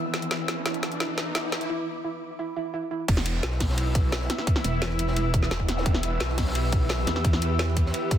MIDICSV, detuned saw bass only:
0, 0, Header, 1, 2, 480
1, 0, Start_track
1, 0, Key_signature, 1, "minor"
1, 0, Tempo, 346821
1, 429, Time_signature, 4, 2, 24, 8
1, 11322, End_track
2, 0, Start_track
2, 0, Title_t, "Detuned saw bass"
2, 0, Program_c, 0, 39
2, 0, Note_on_c, 0, 28, 99
2, 409, Note_off_c, 0, 28, 0
2, 429, Note_on_c, 0, 28, 99
2, 890, Note_off_c, 0, 28, 0
2, 908, Note_on_c, 0, 35, 97
2, 2089, Note_off_c, 0, 35, 0
2, 2109, Note_on_c, 0, 28, 94
2, 2349, Note_off_c, 0, 28, 0
2, 4268, Note_on_c, 0, 28, 96
2, 4729, Note_off_c, 0, 28, 0
2, 4749, Note_on_c, 0, 35, 95
2, 5929, Note_off_c, 0, 35, 0
2, 7628, Note_on_c, 0, 28, 99
2, 8089, Note_off_c, 0, 28, 0
2, 8108, Note_on_c, 0, 28, 102
2, 8569, Note_off_c, 0, 28, 0
2, 8588, Note_on_c, 0, 35, 97
2, 9769, Note_off_c, 0, 35, 0
2, 11322, End_track
0, 0, End_of_file